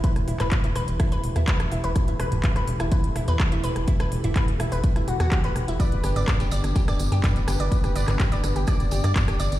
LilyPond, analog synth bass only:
\new Staff \with { instrumentName = "Analog synth bass" } { \clef bass \time 4/4 \key e \minor \tempo 4 = 125 r16 e,,16 e,,16 e,,16 r16 e,,16 e,,16 e,,16 r16 e,,16 e,,16 e,16 r16 e,,16 e,,16 e,,16 | r16 e,,16 e,,16 e,,16 r16 e,,16 e,,16 e,,16 r16 e,,16 e,,16 e,16 r16 e,,16 e,,16 e,,16 | r16 e,,16 e,,16 e,,16 r16 e,,16 e,,16 e,,16 r16 e,,16 e,,16 e,16 r16 fis,,16 e,,16 e,,16 | r16 g,,16 g,,16 g,,16 r16 g,,16 g,,16 g,,16 r16 g,,16 g,,16 g,16 r16 g,,16 g,,16 g,,16 |
r16 g,,16 g,,16 g,,16 r16 g,,16 g,,16 g,,16 r16 g,,16 g,,16 g,16 r16 g,,16 g,,16 g,,16 | }